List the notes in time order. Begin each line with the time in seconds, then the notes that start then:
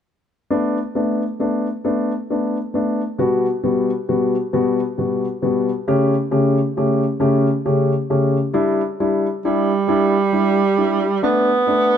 0.50 A3 B3 D4
0.95 A3 B3 D4
1.40 A3 B3 D4
1.84 A3 B3 D4
2.30 A3 B3 D4
2.74 A3 B3 D4
3.18 B2 G3 B3 F#4
3.63 B2 G3 B3 F#4
4.09 B2 G3 B3 F#4
4.53 B2 G3 B3 F#4
4.98 B2 G3 B3 F#4
5.42 B2 G3 B3 F#4
5.87 C#3 A3 C#4 G4
6.31 C#3 A3 C#4 G4
6.77 C#3 A3 C#4 G4
7.20 C#3 A3 C#4 G4
7.65 C#3 A3 C#4 G4
8.10 C#3 A3 C#4 G4
8.53 G3 D4 E4
9.00 G3 D4 E4
9.45 G3 D4 E4
9.88 G3 D4 E4
10.33 G3 D4 E4
10.78 G3 D4 E4
11.22 A3 B3 D4
11.67 A3 B3 D4